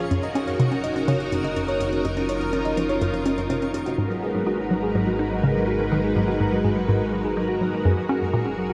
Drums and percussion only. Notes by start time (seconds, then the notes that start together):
0.11 closed hi-hat
0.23 closed hi-hat
0.35 closed hi-hat, low bongo
0.47 closed hi-hat
0.60 closed hi-hat
0.72 closed hi-hat
0.84 closed hi-hat
0.96 closed hi-hat
1.08 closed hi-hat
1.20 closed hi-hat, low bongo
1.32 closed hi-hat
1.44 closed hi-hat
1.56 closed hi-hat
1.68 closed hi-hat
1.81 closed hi-hat
1.93 closed hi-hat
2.05 closed hi-hat, low bongo
2.17 closed hi-hat
2.29 closed hi-hat
2.41 closed hi-hat
2.53 closed hi-hat
2.65 closed hi-hat
2.77 closed hi-hat
2.89 closed hi-hat, low bongo
3.01 closed hi-hat
3.14 closed hi-hat
3.26 closed hi-hat
3.38 closed hi-hat
3.50 closed hi-hat
3.62 closed hi-hat
3.74 closed hi-hat, low bongo
3.86 closed hi-hat